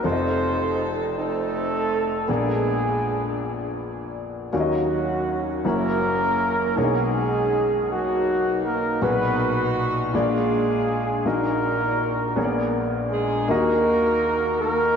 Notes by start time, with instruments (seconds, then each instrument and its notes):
0.03 upright piano F1 F2 C4 F4 A4 D5, horn section C4 D#4 A4 C5
0.12 upright piano D#5
1.18 horn section A3 C4 D#4 A4
2.28 upright piano A#1 A#2 B3 G#4 A#4 D5, horn section G#3 B3 D4 G#4
4.53 upright piano D#2 D#3 C#4 F#4 D5 F5, horn section F#3 A#3 C#4 F#4
4.60 upright piano D#5
5.64 upright piano F#1 F#2 A#3 E4 F#4 C#5, horn section A#3 C#4 E4 A#4
6.76 upright piano B1 B2 A#3 D4 A#4 C#5, horn section G#3 C#4 D#4 G#4
6.84 upright piano D#4
7.90 horn section F#3 A#3 D#4 F#4
8.65 horn section A#3 A#4
9.01 upright piano B1 A#2 B2 F#4 G#4 A#4, horn section B3 D#4 F#4 B4
9.09 upright piano B4
10.13 upright piano A#1 A#2 A#3 F4 G#4 D5, horn section G#3 D4 F4 G#4
11.25 upright piano A#1 A#2 A#3 D#4 F#4 D#5, horn section A#3 D#4 F#4 A#4
12.36 upright piano A#1 A#2 B3 G#4 A#4 C#5
12.44 upright piano D5
13.11 horn section G#3 G#4
13.48 upright piano D#2 D#3 A#3 D#4 F#4 D#5, horn section A#3 D#4 F#4 A#4
14.61 horn section A#3 D#4 F#4 A#4